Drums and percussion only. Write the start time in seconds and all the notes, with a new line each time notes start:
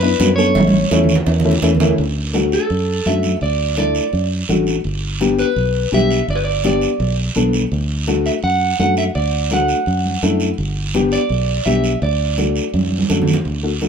0.20 cowbell, high conga, low timbale, short guiro
0.38 short guiro
0.55 cowbell, high conga, long guiro
0.68 high conga
0.91 cowbell, high conga, high timbale, short guiro
1.04 low conga
1.09 short guiro
1.15 low conga
1.27 cowbell, low timbale, long guiro
1.40 low conga
1.51 low conga
1.62 cowbell, low timbale, short guiro
1.75 low conga
1.80 low timbale, short guiro
1.87 low conga
1.98 high conga, long guiro
2.34 high conga, short guiro
2.52 short guiro
2.70 high conga, long guiro
3.05 high conga, short guiro
3.23 high conga, short guiro
3.41 high conga, long guiro
3.77 high conga, short guiro
3.95 short guiro
4.13 high conga, long guiro
4.49 high conga, short guiro
4.67 short guiro
4.84 high conga, long guiro
5.21 high conga, short guiro
5.39 short guiro
5.56 high conga, long guiro
5.93 high conga, short guiro
6.11 short guiro
6.29 high conga, long guiro
6.64 high conga, short guiro
6.81 short guiro
7.00 high conga, long guiro
7.35 high conga, short guiro
7.53 high conga, short guiro
7.72 high conga, long guiro
8.07 high conga, short guiro
8.26 short guiro
8.43 high conga, long guiro
8.79 high conga, short guiro
8.97 short guiro
9.15 high conga, long guiro
9.51 high conga, short guiro
9.68 short guiro
9.86 high conga, long guiro
10.05 high conga
10.22 high conga, short guiro
10.40 short guiro
10.58 high conga, long guiro
10.94 high conga, short guiro
11.12 short guiro
11.29 high conga, long guiro
11.66 high conga, short guiro
11.84 short guiro
12.02 high conga, long guiro
12.38 high conga, short guiro
12.56 short guiro
12.74 high conga, long guiro
12.86 high conga
12.98 high conga
13.10 low conga, short guiro
13.22 low conga
13.27 short guiro
13.34 low conga
13.45 high conga, long guiro
13.81 high conga, short guiro